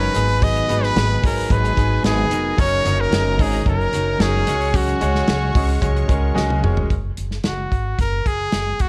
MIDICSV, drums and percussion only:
0, 0, Header, 1, 2, 480
1, 0, Start_track
1, 0, Key_signature, 6, "major"
1, 0, Tempo, 541028
1, 372, Time_signature, 4, 2, 24, 8
1, 7886, End_track
2, 0, Start_track
2, 0, Title_t, "Drums"
2, 129, Note_on_c, 9, 46, 74
2, 132, Note_on_c, 9, 44, 66
2, 218, Note_off_c, 9, 46, 0
2, 221, Note_off_c, 9, 44, 0
2, 255, Note_on_c, 9, 46, 45
2, 344, Note_off_c, 9, 46, 0
2, 374, Note_on_c, 9, 36, 102
2, 375, Note_on_c, 9, 44, 66
2, 376, Note_on_c, 9, 46, 93
2, 462, Note_off_c, 9, 36, 0
2, 464, Note_off_c, 9, 44, 0
2, 465, Note_off_c, 9, 46, 0
2, 496, Note_on_c, 9, 44, 66
2, 585, Note_off_c, 9, 44, 0
2, 615, Note_on_c, 9, 46, 75
2, 617, Note_on_c, 9, 44, 72
2, 704, Note_off_c, 9, 46, 0
2, 706, Note_off_c, 9, 44, 0
2, 739, Note_on_c, 9, 38, 32
2, 827, Note_off_c, 9, 38, 0
2, 856, Note_on_c, 9, 46, 86
2, 859, Note_on_c, 9, 44, 57
2, 860, Note_on_c, 9, 38, 109
2, 945, Note_off_c, 9, 46, 0
2, 948, Note_off_c, 9, 38, 0
2, 948, Note_off_c, 9, 44, 0
2, 1095, Note_on_c, 9, 36, 97
2, 1100, Note_on_c, 9, 44, 68
2, 1104, Note_on_c, 9, 46, 71
2, 1184, Note_off_c, 9, 36, 0
2, 1189, Note_off_c, 9, 44, 0
2, 1192, Note_off_c, 9, 46, 0
2, 1215, Note_on_c, 9, 46, 55
2, 1303, Note_off_c, 9, 46, 0
2, 1331, Note_on_c, 9, 36, 90
2, 1336, Note_on_c, 9, 46, 91
2, 1337, Note_on_c, 9, 44, 60
2, 1420, Note_off_c, 9, 36, 0
2, 1425, Note_off_c, 9, 46, 0
2, 1426, Note_off_c, 9, 44, 0
2, 1456, Note_on_c, 9, 44, 60
2, 1545, Note_off_c, 9, 44, 0
2, 1573, Note_on_c, 9, 36, 78
2, 1575, Note_on_c, 9, 46, 74
2, 1578, Note_on_c, 9, 44, 68
2, 1661, Note_off_c, 9, 36, 0
2, 1663, Note_off_c, 9, 46, 0
2, 1666, Note_off_c, 9, 44, 0
2, 1813, Note_on_c, 9, 46, 97
2, 1814, Note_on_c, 9, 38, 122
2, 1815, Note_on_c, 9, 44, 70
2, 1901, Note_off_c, 9, 46, 0
2, 1903, Note_off_c, 9, 38, 0
2, 1903, Note_off_c, 9, 44, 0
2, 2050, Note_on_c, 9, 46, 76
2, 2053, Note_on_c, 9, 44, 62
2, 2139, Note_off_c, 9, 46, 0
2, 2142, Note_off_c, 9, 44, 0
2, 2292, Note_on_c, 9, 36, 106
2, 2294, Note_on_c, 9, 44, 74
2, 2295, Note_on_c, 9, 46, 93
2, 2380, Note_off_c, 9, 36, 0
2, 2382, Note_off_c, 9, 44, 0
2, 2383, Note_off_c, 9, 46, 0
2, 2532, Note_on_c, 9, 46, 72
2, 2533, Note_on_c, 9, 44, 68
2, 2621, Note_off_c, 9, 46, 0
2, 2622, Note_off_c, 9, 44, 0
2, 2771, Note_on_c, 9, 46, 93
2, 2774, Note_on_c, 9, 44, 62
2, 2775, Note_on_c, 9, 38, 117
2, 2860, Note_off_c, 9, 46, 0
2, 2863, Note_off_c, 9, 44, 0
2, 2864, Note_off_c, 9, 38, 0
2, 3009, Note_on_c, 9, 36, 91
2, 3010, Note_on_c, 9, 44, 66
2, 3013, Note_on_c, 9, 46, 80
2, 3098, Note_off_c, 9, 36, 0
2, 3098, Note_off_c, 9, 44, 0
2, 3102, Note_off_c, 9, 46, 0
2, 3131, Note_on_c, 9, 46, 55
2, 3220, Note_off_c, 9, 46, 0
2, 3247, Note_on_c, 9, 36, 89
2, 3249, Note_on_c, 9, 46, 92
2, 3251, Note_on_c, 9, 44, 65
2, 3336, Note_off_c, 9, 36, 0
2, 3338, Note_off_c, 9, 46, 0
2, 3339, Note_off_c, 9, 44, 0
2, 3371, Note_on_c, 9, 44, 58
2, 3460, Note_off_c, 9, 44, 0
2, 3486, Note_on_c, 9, 46, 79
2, 3489, Note_on_c, 9, 44, 67
2, 3575, Note_off_c, 9, 46, 0
2, 3578, Note_off_c, 9, 44, 0
2, 3728, Note_on_c, 9, 46, 95
2, 3730, Note_on_c, 9, 38, 125
2, 3730, Note_on_c, 9, 44, 70
2, 3817, Note_off_c, 9, 46, 0
2, 3819, Note_off_c, 9, 38, 0
2, 3819, Note_off_c, 9, 44, 0
2, 3966, Note_on_c, 9, 46, 79
2, 3969, Note_on_c, 9, 44, 65
2, 4055, Note_off_c, 9, 46, 0
2, 4058, Note_off_c, 9, 44, 0
2, 4089, Note_on_c, 9, 46, 49
2, 4178, Note_off_c, 9, 46, 0
2, 4206, Note_on_c, 9, 36, 104
2, 4206, Note_on_c, 9, 44, 69
2, 4207, Note_on_c, 9, 46, 94
2, 4294, Note_off_c, 9, 36, 0
2, 4295, Note_off_c, 9, 44, 0
2, 4296, Note_off_c, 9, 46, 0
2, 4331, Note_on_c, 9, 44, 64
2, 4419, Note_off_c, 9, 44, 0
2, 4448, Note_on_c, 9, 46, 68
2, 4449, Note_on_c, 9, 44, 65
2, 4536, Note_off_c, 9, 46, 0
2, 4538, Note_off_c, 9, 44, 0
2, 4571, Note_on_c, 9, 38, 35
2, 4660, Note_off_c, 9, 38, 0
2, 4682, Note_on_c, 9, 46, 83
2, 4685, Note_on_c, 9, 44, 61
2, 4686, Note_on_c, 9, 38, 118
2, 4771, Note_off_c, 9, 46, 0
2, 4774, Note_off_c, 9, 44, 0
2, 4775, Note_off_c, 9, 38, 0
2, 4925, Note_on_c, 9, 36, 99
2, 4926, Note_on_c, 9, 44, 64
2, 4930, Note_on_c, 9, 46, 73
2, 5014, Note_off_c, 9, 36, 0
2, 5015, Note_off_c, 9, 44, 0
2, 5019, Note_off_c, 9, 46, 0
2, 5046, Note_on_c, 9, 46, 55
2, 5135, Note_off_c, 9, 46, 0
2, 5163, Note_on_c, 9, 36, 88
2, 5168, Note_on_c, 9, 46, 102
2, 5170, Note_on_c, 9, 44, 62
2, 5252, Note_off_c, 9, 36, 0
2, 5257, Note_off_c, 9, 46, 0
2, 5258, Note_off_c, 9, 44, 0
2, 5287, Note_on_c, 9, 44, 61
2, 5375, Note_off_c, 9, 44, 0
2, 5403, Note_on_c, 9, 36, 89
2, 5403, Note_on_c, 9, 46, 75
2, 5406, Note_on_c, 9, 44, 70
2, 5492, Note_off_c, 9, 36, 0
2, 5492, Note_off_c, 9, 46, 0
2, 5495, Note_off_c, 9, 44, 0
2, 5646, Note_on_c, 9, 38, 65
2, 5735, Note_off_c, 9, 38, 0
2, 5769, Note_on_c, 9, 48, 65
2, 5858, Note_off_c, 9, 48, 0
2, 5889, Note_on_c, 9, 45, 95
2, 5978, Note_off_c, 9, 45, 0
2, 6008, Note_on_c, 9, 43, 98
2, 6096, Note_off_c, 9, 43, 0
2, 6125, Note_on_c, 9, 36, 88
2, 6128, Note_on_c, 9, 42, 76
2, 6214, Note_off_c, 9, 36, 0
2, 6217, Note_off_c, 9, 42, 0
2, 6364, Note_on_c, 9, 42, 62
2, 6452, Note_off_c, 9, 42, 0
2, 6486, Note_on_c, 9, 38, 31
2, 6575, Note_off_c, 9, 38, 0
2, 6597, Note_on_c, 9, 42, 76
2, 6601, Note_on_c, 9, 38, 99
2, 6686, Note_off_c, 9, 42, 0
2, 6690, Note_off_c, 9, 38, 0
2, 6847, Note_on_c, 9, 36, 81
2, 6851, Note_on_c, 9, 42, 66
2, 6935, Note_off_c, 9, 36, 0
2, 6939, Note_off_c, 9, 42, 0
2, 7084, Note_on_c, 9, 36, 77
2, 7088, Note_on_c, 9, 42, 81
2, 7173, Note_off_c, 9, 36, 0
2, 7176, Note_off_c, 9, 42, 0
2, 7326, Note_on_c, 9, 36, 65
2, 7327, Note_on_c, 9, 42, 60
2, 7414, Note_off_c, 9, 36, 0
2, 7416, Note_off_c, 9, 42, 0
2, 7561, Note_on_c, 9, 42, 83
2, 7563, Note_on_c, 9, 38, 101
2, 7650, Note_off_c, 9, 42, 0
2, 7651, Note_off_c, 9, 38, 0
2, 7802, Note_on_c, 9, 42, 65
2, 7807, Note_on_c, 9, 36, 76
2, 7886, Note_off_c, 9, 36, 0
2, 7886, Note_off_c, 9, 42, 0
2, 7886, End_track
0, 0, End_of_file